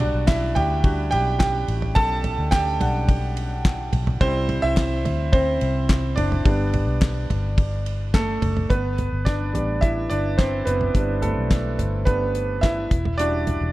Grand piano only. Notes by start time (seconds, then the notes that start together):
Already playing: G3 F#4
0.00 D4 D5
0.27 E4 E5
0.55 G4 G5
0.84 G3 D4 F#4
1.11 G4 G5
1.39 G4 G5
1.95 A4 A5
2.51 G4 G5
2.80 G3 D4 F#5
4.21 G3 C4 E4 C5
4.62 E4 E5
5.33 C4 C5
6.16 D4 D5
6.45 G3 B3 D4
8.14 A3 A4
8.70 B3 B4
9.25 D4 D5
9.53 G3 B3 D4
9.81 E4 E5
10.10 D4 D5
10.38 C4 C5
10.65 B3 B4
10.95 G3 B3 D4
11.22 A3 A4
12.05 G3 B3 D4 B4
12.61 E4 E5
13.18 G3 D4 E4 F#4 D5